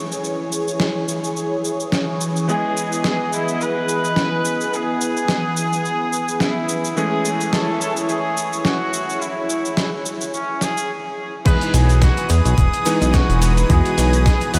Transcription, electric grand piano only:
0.00 2.45 E3 medium
0.00 2.45 G#3 medium
0.00 2.45 A3 medium
0.00 2.46 C#4 medium
0.00 2.46 G#4 medium
2.48 6.94 E3 medium
2.48 6.94 G#3 medium
2.48 6.94 B3 medium
2.48 6.95 G#4 medium
2.48 6.94 D#5 medium
6.96 10.89 E3 medium
6.96 10.89 G#3 medium
6.96 10.90 A3 medium
6.96 10.90 C#4 medium
6.96 10.90 G#4 medium
11.45 12.83 E3 medium
11.45 12.83 G#3 medium
11.45 12.83 B3 medium
11.45 12.83 D#4 medium
11.45 12.84 G#4 medium
12.85 13.67 E3 medium
12.85 13.67 G#3 medium
12.85 13.67 B3 medium
12.85 13.67 D#4 medium
12.85 13.68 G#4 loud
13.69 14.59 E3 medium
13.69 14.59 G#3 medium
13.69 14.59 B3 medium
13.69 14.59 D#4 medium
13.69 14.59 F#4 medium

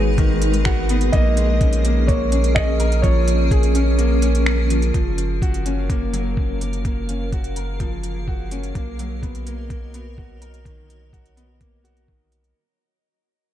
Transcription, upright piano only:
0.00 1.15 F#3 medium
0.00 1.15 G#3 loud
0.00 0.90 B3 loud
0.00 0.65 F#4 medium
0.00 0.17 G#4 medium
0.18 0.40 D#3 loud
0.65 0.88 F#4 loud
0.90 1.03 B3 loud
1.13 1.36 A#3 loud
1.37 1.60 G#3 medium
1.61 1.83 C#4 medium
1.85 2.07 A#3 medium
2.08 2.22 A#3 medium
2.32 2.55 C#4 medium
2.56 2.70 G#4 medium
2.80 3.02 A#4 medium
3.04 3.26 F3 loud
3.51 3.74 G#4 loud
3.75 3.88 C#4 loud
3.98 4.21 A#3 loud
4.23 4.36 C#4 loud
4.47 4.60 C#4 medium
4.71 4.93 F3 medium
4.94 5.17 F3 medium
5.42 5.64 F#4 medium
5.66 5.79 C#4 medium
5.90 6.12 A#3 loud
6.13 6.36 F#3 medium
6.37 6.60 C#4 medium
6.61 6.84 A#3 medium
6.86 6.99 A#3 medium
7.09 7.31 C#4 medium
7.33 7.46 F#4 medium
7.57 7.79 A#4 medium
7.80 8.03 F3 medium
8.28 8.50 F#4 medium
8.52 8.65 C#4 medium
8.75 8.98 A#3 medium
9.00 9.22 F#3 medium
9.23 9.45 B3 medium
9.46 9.69 A#3 medium
9.70 9.84 A#3 medium
9.94 10.17 B3 medium
10.18 10.32 F#4 medium
10.41 10.64 A#4 medium
10.65 10.88 D#3 medium
11.13 11.35 F#4 medium
11.36 11.50 B3 medium
11.60 11.83 A#3 medium
11.84 12.07 F#4 medium
12.08 12.31 D#3 medium

